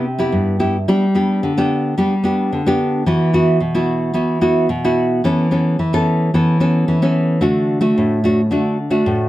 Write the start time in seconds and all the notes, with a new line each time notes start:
Already playing: C3
0.18 B3 E4 G4
0.32 G2
0.60 B3 E4 G4
0.88 G3 B3 D4 G4
1.15 B3 D4 G4
1.43 D3
1.57 B3 D4 G4
1.98 G3 B3 D4 G4
2.24 B3 D4 G4
2.53 D3
2.66 B3 D4 G4
3.06 E3 B3 E4 F#4
3.33 B3 E4 F#4
3.60 B2
3.75 B3 E4 F#4
4.14 E3 B3 E4 F#4
4.41 B3 E4 F#4
4.69 B2
4.84 B3 E4 F#4
5.24 E3 B3 C#4 A4
5.51 B3 C#4 A4
5.79 E3
5.93 B3 C#4 A4
6.34 E3 B3 C#4 A4
6.60 B3 C#4 A4
6.88 E3
7.02 B3 C#4 A4
7.41 D3 A3 D4 F#4
7.81 A3 D4 F#4
7.98 A2
8.24 A3 D4 F#4
8.51 D3 A3 D4 F#4
8.90 A3 D4 F#4
9.06 A2